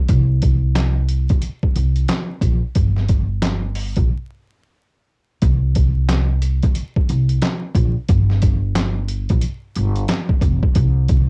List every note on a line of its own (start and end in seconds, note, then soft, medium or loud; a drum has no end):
0.09 1.26 C2 loud
0.09 kick loud
0.09 closed hi-hat medium
0.42 kick medium
0.42 closed hi-hat medium
0.75 snare loud
0.75 clap medium
0.75 closed hi-hat loud
1.09 closed hi-hat medium
1.29 1.40 D2 medium
1.29 kick medium
1.29 closed hi-hat medium
1.42 closed hi-hat medium
1.63 kick medium
1.76 2.03 C2 medium
1.76 closed hi-hat medium
1.96 closed hi-hat medium
2.08 snare loud
2.08 clap medium
2.08 closed hi-hat medium
2.41 2.59 A#1 loud
2.41 kick medium
2.41 closed hi-hat medium
2.75 3.93 G1 loud
2.75 kick loud
2.75 closed hi-hat medium
2.96 snare soft
3.08 kick medium
3.08 closed hi-hat medium
3.42 snare loud
3.42 clap medium
3.42 closed hi-hat loud
3.75 open hi-hat medium
3.96 4.07 A#1 loud
3.96 kick medium
3.96 closed hi-hat medium
5.42 6.59 C2 loud
5.42 kick loud
5.42 closed hi-hat medium
5.75 kick loud
5.75 closed hi-hat medium
6.09 snare loud
6.09 clap loud
6.09 closed hi-hat loud
6.42 closed hi-hat medium
6.63 6.74 D2 medium
6.63 kick medium
6.63 closed hi-hat medium
6.75 closed hi-hat medium
6.96 kick medium
7.09 7.37 C2 medium
7.09 closed hi-hat medium
7.29 closed hi-hat medium
7.42 snare loud
7.42 clap medium
7.42 closed hi-hat medium
7.75 7.92 A#1 loud
7.75 kick medium
7.75 closed hi-hat medium
8.08 9.26 G1 loud
8.08 kick loud
8.08 closed hi-hat medium
8.30 snare soft
8.42 kick loud
8.42 closed hi-hat medium
8.75 snare loud
8.75 clap loud
8.75 closed hi-hat loud
9.08 closed hi-hat medium
9.29 9.40 A#1 loud
9.29 kick medium
9.29 closed hi-hat medium
9.41 closed hi-hat medium
9.75 10.03 G1 loud
9.75 closed hi-hat medium
9.96 closed hi-hat medium
10.08 snare loud
10.08 clap medium
10.08 closed hi-hat medium
10.29 kick medium
10.41 10.59 F1 medium
10.41 kick medium
10.41 closed hi-hat medium
10.63 kick loud
10.75 11.30 C2 loud
10.75 kick loud
10.75 closed hi-hat medium
11.08 kick medium
11.08 closed hi-hat medium